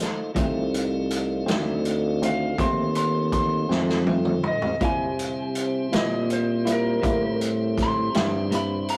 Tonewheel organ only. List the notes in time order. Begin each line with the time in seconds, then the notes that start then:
Already playing: A3 D#4 F4 C5
0.34 A3 C4 D#4 F4
4.80 G3 C4 E4 C5